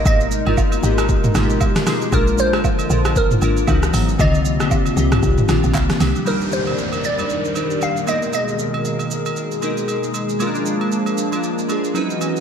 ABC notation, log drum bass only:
X:1
M:4/4
L:1/16
Q:"Swing 16ths" 1/4=116
K:Eb
V:1 name="Log drum bass" clef=bass
A,,,3 G,,,3 A,,,3 z A,,,2 z4 | B,,,3 A,,,3 B,,,3 z A,,,2 _D,,2 A,,,2 | C,,3 B,,,3 C,,2 C,, z B,,, B,,, C,, z C,, z | z16 |
z16 | z16 |]